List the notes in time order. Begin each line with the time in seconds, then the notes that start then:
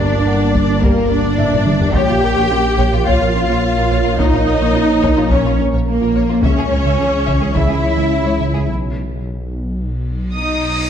Already playing: G1 G3 A#3 D4 A#4 D5 C#6
0.13 G3
0.27 A#3 F#5
0.55 G3, taiko
0.69 D4
0.82 G3 A#3 G4 A#4, taiko
0.97 G4
1.10 A#3 D4 D5
1.25 G3
1.38 E5, taiko low-mid
1.53 D4, taiko low-mid
1.67 G3, taiko mid
1.80 G4, taiko low
1.94 A#1 F3 A#3 F4 G4 A#4 C#5 G5, taiko
2.08 A#1 F4
2.22 A#1 A#4
2.36 A#1 A#3 C#5
2.50 A#1 C#4 F4
2.78 A#1 A#3 C#5, taiko
2.92 A#1 F4
3.06 A#1 A#3 F4 C#5 F5, taiko
3.20 A#1 F4 A#4
3.34 A#1 C#4 A#4
3.48 A#1 A#3 C#5
3.76 A#1 F4 A#4
3.90 A#1 A#3 C#5
4.04 A#1 F4 A#4
4.19 A#1 A#3 D#4 F4 C#5 D#5, taiko
4.33 A#1 F4
4.47 A#1 A#4
4.60 A#1 A#3 C#5
4.74 A#1 C#4 F4
5.02 A#1 A#3 C#5 A#5, taiko
5.16 A#1 F4
5.31 A#1 A#3 C#4 F4 C#5, taiko
5.44 A#1 F4 A#4
5.58 A#1 C#4 A#4
5.73 A#1 A#3 C#5
5.87 A#3 A#4
6.00 A#1 F4 A#4
6.14 A#1 A#3 C#5
6.28 A#1 F4 A#4
6.42 C#2 C#3 E3 C#4 G#4 C#5 E5, taiko
6.57 C#2 G#3 G#4
6.70 C#2 C#4 C#5
6.84 C#2 C#3 E5
6.99 C#2 E3 G#4
7.27 C#2 C#3 E5, taiko
7.41 C#2 G#3 G#4
7.55 C#2 C#3 E4 G#4 E5, taiko
7.68 C#2 C#4 G#4
7.83 C#2 E3 C#5
7.96 C#2 C#3 E5
8.24 C#2 G#3 C#5
8.39 C#2 C#3 E5
8.53 C#2 C#4 G#4
8.68 B1, reverse cymbal
10.35 D#4 D#5 D#6